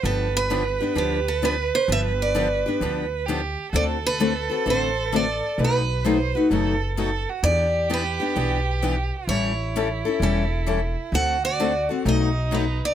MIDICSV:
0, 0, Header, 1, 5, 480
1, 0, Start_track
1, 0, Tempo, 462250
1, 44, Time_signature, 4, 2, 24, 8
1, 13437, End_track
2, 0, Start_track
2, 0, Title_t, "Steel-string acoustic guitar"
2, 0, Program_c, 0, 25
2, 56, Note_on_c, 0, 69, 86
2, 372, Note_off_c, 0, 69, 0
2, 380, Note_on_c, 0, 71, 105
2, 815, Note_off_c, 0, 71, 0
2, 1020, Note_on_c, 0, 67, 75
2, 1332, Note_on_c, 0, 69, 81
2, 1333, Note_off_c, 0, 67, 0
2, 1479, Note_off_c, 0, 69, 0
2, 1504, Note_on_c, 0, 71, 83
2, 1785, Note_off_c, 0, 71, 0
2, 1816, Note_on_c, 0, 72, 99
2, 1961, Note_off_c, 0, 72, 0
2, 1996, Note_on_c, 0, 76, 116
2, 2075, Note_off_c, 0, 76, 0
2, 2306, Note_on_c, 0, 74, 93
2, 2737, Note_off_c, 0, 74, 0
2, 3901, Note_on_c, 0, 74, 114
2, 3983, Note_off_c, 0, 74, 0
2, 4221, Note_on_c, 0, 71, 103
2, 4811, Note_off_c, 0, 71, 0
2, 4882, Note_on_c, 0, 72, 93
2, 5235, Note_off_c, 0, 72, 0
2, 5235, Note_on_c, 0, 71, 93
2, 5354, Note_off_c, 0, 71, 0
2, 5358, Note_on_c, 0, 74, 82
2, 5832, Note_off_c, 0, 74, 0
2, 5861, Note_on_c, 0, 71, 85
2, 7229, Note_off_c, 0, 71, 0
2, 7721, Note_on_c, 0, 74, 103
2, 8167, Note_off_c, 0, 74, 0
2, 8240, Note_on_c, 0, 71, 81
2, 9139, Note_off_c, 0, 71, 0
2, 9644, Note_on_c, 0, 73, 106
2, 10625, Note_on_c, 0, 69, 76
2, 10631, Note_off_c, 0, 73, 0
2, 11365, Note_off_c, 0, 69, 0
2, 11578, Note_on_c, 0, 78, 108
2, 11861, Note_off_c, 0, 78, 0
2, 11887, Note_on_c, 0, 74, 97
2, 12327, Note_off_c, 0, 74, 0
2, 12548, Note_on_c, 0, 75, 79
2, 13026, Note_on_c, 0, 71, 70
2, 13028, Note_off_c, 0, 75, 0
2, 13306, Note_off_c, 0, 71, 0
2, 13345, Note_on_c, 0, 74, 95
2, 13437, Note_off_c, 0, 74, 0
2, 13437, End_track
3, 0, Start_track
3, 0, Title_t, "Violin"
3, 0, Program_c, 1, 40
3, 30, Note_on_c, 1, 71, 106
3, 3381, Note_on_c, 1, 67, 99
3, 3397, Note_off_c, 1, 71, 0
3, 3849, Note_off_c, 1, 67, 0
3, 3855, Note_on_c, 1, 69, 101
3, 5807, Note_on_c, 1, 71, 89
3, 5823, Note_off_c, 1, 69, 0
3, 6277, Note_on_c, 1, 72, 96
3, 6293, Note_off_c, 1, 71, 0
3, 6601, Note_on_c, 1, 71, 86
3, 6617, Note_off_c, 1, 72, 0
3, 6758, Note_off_c, 1, 71, 0
3, 6764, Note_on_c, 1, 69, 96
3, 7208, Note_off_c, 1, 69, 0
3, 7247, Note_on_c, 1, 69, 97
3, 7573, Note_on_c, 1, 66, 83
3, 7588, Note_off_c, 1, 69, 0
3, 7732, Note_on_c, 1, 67, 102
3, 7747, Note_off_c, 1, 66, 0
3, 9628, Note_on_c, 1, 64, 84
3, 9644, Note_off_c, 1, 67, 0
3, 11573, Note_on_c, 1, 66, 88
3, 11588, Note_off_c, 1, 64, 0
3, 12511, Note_on_c, 1, 63, 85
3, 12526, Note_off_c, 1, 66, 0
3, 13437, Note_off_c, 1, 63, 0
3, 13437, End_track
4, 0, Start_track
4, 0, Title_t, "Steel-string acoustic guitar"
4, 0, Program_c, 2, 25
4, 40, Note_on_c, 2, 50, 53
4, 44, Note_on_c, 2, 53, 60
4, 53, Note_on_c, 2, 59, 68
4, 55, Note_on_c, 2, 62, 68
4, 59, Note_on_c, 2, 67, 71
4, 273, Note_off_c, 2, 50, 0
4, 274, Note_off_c, 2, 53, 0
4, 279, Note_off_c, 2, 59, 0
4, 280, Note_off_c, 2, 62, 0
4, 282, Note_off_c, 2, 67, 0
4, 520, Note_on_c, 2, 50, 95
4, 527, Note_on_c, 2, 59, 89
4, 529, Note_on_c, 2, 53, 88
4, 533, Note_on_c, 2, 62, 89
4, 535, Note_on_c, 2, 67, 88
4, 643, Note_off_c, 2, 50, 0
4, 647, Note_off_c, 2, 59, 0
4, 648, Note_off_c, 2, 53, 0
4, 650, Note_off_c, 2, 62, 0
4, 651, Note_off_c, 2, 67, 0
4, 836, Note_on_c, 2, 67, 58
4, 846, Note_on_c, 2, 62, 55
4, 858, Note_on_c, 2, 59, 54
4, 985, Note_off_c, 2, 59, 0
4, 988, Note_off_c, 2, 62, 0
4, 991, Note_on_c, 2, 50, 68
4, 995, Note_off_c, 2, 67, 0
4, 995, Note_on_c, 2, 53, 68
4, 998, Note_on_c, 2, 59, 65
4, 1000, Note_on_c, 2, 62, 64
4, 1006, Note_on_c, 2, 67, 70
4, 1227, Note_off_c, 2, 50, 0
4, 1229, Note_off_c, 2, 53, 0
4, 1231, Note_off_c, 2, 59, 0
4, 1232, Note_off_c, 2, 62, 0
4, 1235, Note_off_c, 2, 67, 0
4, 1476, Note_on_c, 2, 50, 74
4, 1483, Note_on_c, 2, 53, 86
4, 1483, Note_on_c, 2, 59, 84
4, 1489, Note_on_c, 2, 62, 83
4, 1493, Note_on_c, 2, 67, 81
4, 1601, Note_off_c, 2, 50, 0
4, 1604, Note_off_c, 2, 53, 0
4, 1604, Note_off_c, 2, 59, 0
4, 1607, Note_off_c, 2, 62, 0
4, 1609, Note_off_c, 2, 67, 0
4, 1955, Note_on_c, 2, 50, 54
4, 1958, Note_on_c, 2, 53, 55
4, 1961, Note_on_c, 2, 59, 57
4, 1967, Note_on_c, 2, 62, 64
4, 1968, Note_on_c, 2, 67, 57
4, 2189, Note_off_c, 2, 50, 0
4, 2190, Note_off_c, 2, 53, 0
4, 2192, Note_off_c, 2, 59, 0
4, 2195, Note_off_c, 2, 62, 0
4, 2195, Note_off_c, 2, 67, 0
4, 2437, Note_on_c, 2, 50, 98
4, 2444, Note_on_c, 2, 53, 81
4, 2447, Note_on_c, 2, 59, 81
4, 2449, Note_on_c, 2, 62, 93
4, 2453, Note_on_c, 2, 67, 114
4, 2561, Note_off_c, 2, 50, 0
4, 2564, Note_off_c, 2, 53, 0
4, 2566, Note_off_c, 2, 59, 0
4, 2567, Note_off_c, 2, 62, 0
4, 2569, Note_off_c, 2, 67, 0
4, 2761, Note_on_c, 2, 67, 60
4, 2778, Note_on_c, 2, 62, 54
4, 2786, Note_on_c, 2, 59, 53
4, 2917, Note_off_c, 2, 67, 0
4, 2919, Note_off_c, 2, 59, 0
4, 2920, Note_on_c, 2, 50, 69
4, 2925, Note_off_c, 2, 62, 0
4, 2931, Note_on_c, 2, 53, 73
4, 2931, Note_on_c, 2, 59, 72
4, 2937, Note_on_c, 2, 62, 77
4, 2940, Note_on_c, 2, 67, 83
4, 3151, Note_off_c, 2, 50, 0
4, 3156, Note_off_c, 2, 53, 0
4, 3156, Note_off_c, 2, 59, 0
4, 3159, Note_off_c, 2, 62, 0
4, 3161, Note_off_c, 2, 67, 0
4, 3408, Note_on_c, 2, 50, 82
4, 3416, Note_on_c, 2, 53, 80
4, 3417, Note_on_c, 2, 59, 88
4, 3421, Note_on_c, 2, 62, 74
4, 3425, Note_on_c, 2, 67, 88
4, 3526, Note_off_c, 2, 50, 0
4, 3530, Note_off_c, 2, 53, 0
4, 3531, Note_off_c, 2, 59, 0
4, 3532, Note_off_c, 2, 62, 0
4, 3534, Note_off_c, 2, 67, 0
4, 3882, Note_on_c, 2, 50, 62
4, 3886, Note_on_c, 2, 57, 56
4, 3887, Note_on_c, 2, 60, 59
4, 3892, Note_on_c, 2, 69, 74
4, 3893, Note_on_c, 2, 66, 70
4, 4111, Note_off_c, 2, 50, 0
4, 4113, Note_off_c, 2, 57, 0
4, 4114, Note_off_c, 2, 60, 0
4, 4117, Note_off_c, 2, 66, 0
4, 4117, Note_off_c, 2, 69, 0
4, 4361, Note_on_c, 2, 50, 92
4, 4365, Note_on_c, 2, 57, 98
4, 4369, Note_on_c, 2, 60, 102
4, 4371, Note_on_c, 2, 66, 94
4, 4372, Note_on_c, 2, 69, 89
4, 4482, Note_off_c, 2, 50, 0
4, 4484, Note_off_c, 2, 57, 0
4, 4487, Note_off_c, 2, 60, 0
4, 4487, Note_off_c, 2, 66, 0
4, 4488, Note_off_c, 2, 69, 0
4, 4669, Note_on_c, 2, 69, 63
4, 4684, Note_on_c, 2, 66, 59
4, 4692, Note_on_c, 2, 60, 50
4, 4830, Note_off_c, 2, 69, 0
4, 4836, Note_off_c, 2, 60, 0
4, 4838, Note_off_c, 2, 66, 0
4, 4838, Note_on_c, 2, 50, 75
4, 4841, Note_on_c, 2, 57, 71
4, 4849, Note_on_c, 2, 60, 68
4, 4851, Note_on_c, 2, 66, 70
4, 4855, Note_on_c, 2, 69, 76
4, 5069, Note_off_c, 2, 50, 0
4, 5071, Note_off_c, 2, 57, 0
4, 5075, Note_off_c, 2, 60, 0
4, 5076, Note_off_c, 2, 66, 0
4, 5078, Note_off_c, 2, 69, 0
4, 5320, Note_on_c, 2, 50, 75
4, 5323, Note_on_c, 2, 57, 97
4, 5331, Note_on_c, 2, 60, 83
4, 5331, Note_on_c, 2, 66, 96
4, 5336, Note_on_c, 2, 69, 89
4, 5442, Note_off_c, 2, 50, 0
4, 5443, Note_off_c, 2, 57, 0
4, 5447, Note_off_c, 2, 60, 0
4, 5447, Note_off_c, 2, 66, 0
4, 5450, Note_off_c, 2, 69, 0
4, 5797, Note_on_c, 2, 47, 54
4, 5805, Note_on_c, 2, 54, 54
4, 5807, Note_on_c, 2, 57, 64
4, 5813, Note_on_c, 2, 63, 58
4, 5813, Note_on_c, 2, 66, 54
4, 6029, Note_off_c, 2, 47, 0
4, 6033, Note_off_c, 2, 54, 0
4, 6034, Note_off_c, 2, 57, 0
4, 6037, Note_off_c, 2, 63, 0
4, 6037, Note_off_c, 2, 66, 0
4, 6278, Note_on_c, 2, 47, 90
4, 6286, Note_on_c, 2, 54, 89
4, 6287, Note_on_c, 2, 57, 90
4, 6291, Note_on_c, 2, 63, 94
4, 6294, Note_on_c, 2, 66, 101
4, 6401, Note_off_c, 2, 47, 0
4, 6405, Note_off_c, 2, 54, 0
4, 6405, Note_off_c, 2, 57, 0
4, 6407, Note_off_c, 2, 63, 0
4, 6409, Note_off_c, 2, 66, 0
4, 6593, Note_on_c, 2, 66, 64
4, 6611, Note_on_c, 2, 63, 52
4, 6617, Note_on_c, 2, 57, 52
4, 6753, Note_off_c, 2, 57, 0
4, 6753, Note_off_c, 2, 66, 0
4, 6758, Note_off_c, 2, 63, 0
4, 6758, Note_on_c, 2, 47, 62
4, 6763, Note_on_c, 2, 54, 70
4, 6766, Note_on_c, 2, 57, 66
4, 6770, Note_on_c, 2, 63, 65
4, 6776, Note_on_c, 2, 66, 84
4, 6990, Note_off_c, 2, 47, 0
4, 6992, Note_off_c, 2, 54, 0
4, 6994, Note_off_c, 2, 57, 0
4, 6996, Note_off_c, 2, 63, 0
4, 6999, Note_off_c, 2, 66, 0
4, 7241, Note_on_c, 2, 47, 88
4, 7246, Note_on_c, 2, 54, 75
4, 7246, Note_on_c, 2, 57, 74
4, 7249, Note_on_c, 2, 63, 85
4, 7250, Note_on_c, 2, 66, 85
4, 7363, Note_off_c, 2, 47, 0
4, 7365, Note_off_c, 2, 54, 0
4, 7365, Note_off_c, 2, 57, 0
4, 7366, Note_off_c, 2, 63, 0
4, 7367, Note_off_c, 2, 66, 0
4, 7727, Note_on_c, 2, 52, 63
4, 7732, Note_on_c, 2, 59, 63
4, 7736, Note_on_c, 2, 62, 72
4, 7739, Note_on_c, 2, 67, 67
4, 7954, Note_off_c, 2, 52, 0
4, 7957, Note_off_c, 2, 59, 0
4, 7959, Note_off_c, 2, 62, 0
4, 7960, Note_off_c, 2, 67, 0
4, 8200, Note_on_c, 2, 52, 80
4, 8203, Note_on_c, 2, 59, 86
4, 8209, Note_on_c, 2, 62, 94
4, 8211, Note_on_c, 2, 67, 88
4, 8322, Note_off_c, 2, 52, 0
4, 8323, Note_off_c, 2, 59, 0
4, 8327, Note_off_c, 2, 62, 0
4, 8328, Note_off_c, 2, 67, 0
4, 8512, Note_on_c, 2, 67, 67
4, 8529, Note_on_c, 2, 62, 57
4, 8534, Note_on_c, 2, 59, 46
4, 8672, Note_off_c, 2, 67, 0
4, 8673, Note_off_c, 2, 59, 0
4, 8673, Note_off_c, 2, 62, 0
4, 8677, Note_on_c, 2, 52, 62
4, 8685, Note_on_c, 2, 59, 77
4, 8685, Note_on_c, 2, 62, 73
4, 8692, Note_on_c, 2, 67, 72
4, 8910, Note_off_c, 2, 52, 0
4, 8913, Note_off_c, 2, 59, 0
4, 8914, Note_off_c, 2, 62, 0
4, 8917, Note_off_c, 2, 67, 0
4, 9163, Note_on_c, 2, 52, 76
4, 9166, Note_on_c, 2, 59, 91
4, 9175, Note_on_c, 2, 62, 83
4, 9179, Note_on_c, 2, 67, 93
4, 9284, Note_off_c, 2, 52, 0
4, 9285, Note_off_c, 2, 59, 0
4, 9290, Note_off_c, 2, 62, 0
4, 9291, Note_off_c, 2, 67, 0
4, 9650, Note_on_c, 2, 52, 56
4, 9652, Note_on_c, 2, 55, 59
4, 9658, Note_on_c, 2, 61, 59
4, 9661, Note_on_c, 2, 64, 66
4, 9662, Note_on_c, 2, 69, 71
4, 9876, Note_off_c, 2, 52, 0
4, 9877, Note_off_c, 2, 55, 0
4, 9880, Note_off_c, 2, 61, 0
4, 9882, Note_off_c, 2, 64, 0
4, 9882, Note_off_c, 2, 69, 0
4, 10131, Note_on_c, 2, 52, 80
4, 10136, Note_on_c, 2, 55, 101
4, 10140, Note_on_c, 2, 61, 86
4, 10141, Note_on_c, 2, 64, 88
4, 10145, Note_on_c, 2, 69, 97
4, 10248, Note_off_c, 2, 52, 0
4, 10250, Note_off_c, 2, 55, 0
4, 10252, Note_off_c, 2, 61, 0
4, 10253, Note_off_c, 2, 64, 0
4, 10255, Note_off_c, 2, 69, 0
4, 10437, Note_on_c, 2, 69, 64
4, 10451, Note_on_c, 2, 64, 58
4, 10465, Note_on_c, 2, 61, 49
4, 10595, Note_off_c, 2, 69, 0
4, 10602, Note_off_c, 2, 64, 0
4, 10603, Note_off_c, 2, 61, 0
4, 10613, Note_on_c, 2, 52, 63
4, 10614, Note_on_c, 2, 55, 69
4, 10616, Note_on_c, 2, 61, 78
4, 10622, Note_on_c, 2, 64, 77
4, 10624, Note_on_c, 2, 69, 72
4, 10837, Note_off_c, 2, 52, 0
4, 10838, Note_off_c, 2, 55, 0
4, 10839, Note_off_c, 2, 61, 0
4, 10842, Note_off_c, 2, 64, 0
4, 10843, Note_off_c, 2, 69, 0
4, 11074, Note_on_c, 2, 52, 78
4, 11077, Note_on_c, 2, 55, 79
4, 11081, Note_on_c, 2, 61, 79
4, 11086, Note_on_c, 2, 64, 84
4, 11086, Note_on_c, 2, 69, 95
4, 11199, Note_off_c, 2, 52, 0
4, 11201, Note_off_c, 2, 55, 0
4, 11203, Note_off_c, 2, 61, 0
4, 11205, Note_off_c, 2, 64, 0
4, 11206, Note_off_c, 2, 69, 0
4, 11564, Note_on_c, 2, 50, 51
4, 11567, Note_on_c, 2, 57, 69
4, 11570, Note_on_c, 2, 60, 61
4, 11572, Note_on_c, 2, 66, 64
4, 11577, Note_on_c, 2, 69, 59
4, 11793, Note_off_c, 2, 50, 0
4, 11794, Note_off_c, 2, 57, 0
4, 11796, Note_off_c, 2, 60, 0
4, 11797, Note_off_c, 2, 66, 0
4, 11800, Note_off_c, 2, 69, 0
4, 12041, Note_on_c, 2, 50, 85
4, 12044, Note_on_c, 2, 57, 88
4, 12048, Note_on_c, 2, 60, 93
4, 12052, Note_on_c, 2, 69, 91
4, 12054, Note_on_c, 2, 66, 98
4, 12163, Note_off_c, 2, 50, 0
4, 12164, Note_off_c, 2, 57, 0
4, 12166, Note_off_c, 2, 60, 0
4, 12168, Note_off_c, 2, 69, 0
4, 12170, Note_off_c, 2, 66, 0
4, 12347, Note_on_c, 2, 69, 56
4, 12361, Note_on_c, 2, 66, 54
4, 12371, Note_on_c, 2, 60, 50
4, 12510, Note_off_c, 2, 69, 0
4, 12517, Note_off_c, 2, 66, 0
4, 12519, Note_off_c, 2, 60, 0
4, 12519, Note_on_c, 2, 47, 65
4, 12521, Note_on_c, 2, 54, 69
4, 12524, Note_on_c, 2, 57, 75
4, 12528, Note_on_c, 2, 63, 73
4, 12530, Note_on_c, 2, 66, 77
4, 12751, Note_off_c, 2, 47, 0
4, 12752, Note_off_c, 2, 54, 0
4, 12753, Note_off_c, 2, 57, 0
4, 12755, Note_off_c, 2, 63, 0
4, 12756, Note_off_c, 2, 66, 0
4, 12992, Note_on_c, 2, 47, 80
4, 13000, Note_on_c, 2, 54, 82
4, 13004, Note_on_c, 2, 57, 85
4, 13005, Note_on_c, 2, 63, 87
4, 13009, Note_on_c, 2, 66, 84
4, 13118, Note_off_c, 2, 47, 0
4, 13122, Note_off_c, 2, 54, 0
4, 13124, Note_off_c, 2, 57, 0
4, 13125, Note_off_c, 2, 63, 0
4, 13127, Note_off_c, 2, 66, 0
4, 13437, End_track
5, 0, Start_track
5, 0, Title_t, "Upright bass"
5, 0, Program_c, 3, 32
5, 35, Note_on_c, 3, 31, 91
5, 805, Note_off_c, 3, 31, 0
5, 991, Note_on_c, 3, 38, 72
5, 1763, Note_off_c, 3, 38, 0
5, 1953, Note_on_c, 3, 31, 91
5, 2723, Note_off_c, 3, 31, 0
5, 2913, Note_on_c, 3, 38, 81
5, 3683, Note_off_c, 3, 38, 0
5, 3872, Note_on_c, 3, 38, 98
5, 4643, Note_off_c, 3, 38, 0
5, 4839, Note_on_c, 3, 33, 75
5, 5607, Note_off_c, 3, 33, 0
5, 5793, Note_on_c, 3, 35, 86
5, 6564, Note_off_c, 3, 35, 0
5, 6755, Note_on_c, 3, 30, 78
5, 7525, Note_off_c, 3, 30, 0
5, 7713, Note_on_c, 3, 40, 89
5, 8484, Note_off_c, 3, 40, 0
5, 8680, Note_on_c, 3, 35, 77
5, 9448, Note_off_c, 3, 35, 0
5, 9630, Note_on_c, 3, 33, 80
5, 10402, Note_off_c, 3, 33, 0
5, 10591, Note_on_c, 3, 28, 82
5, 11362, Note_off_c, 3, 28, 0
5, 11547, Note_on_c, 3, 38, 91
5, 12320, Note_off_c, 3, 38, 0
5, 12515, Note_on_c, 3, 35, 97
5, 13285, Note_off_c, 3, 35, 0
5, 13437, End_track
0, 0, End_of_file